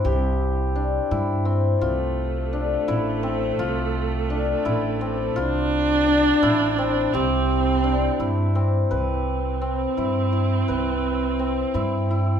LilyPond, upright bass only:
\new Staff \with { instrumentName = "Upright bass" } { \clef bass \time 5/8 \key c \major \tempo 4 = 85 c,4. g,4 | c,4. a,,4 | c,4. a,,4 | c,4. a,,4 |
c,4. g,4 | c,4. g,4 | c,4. g,4 | }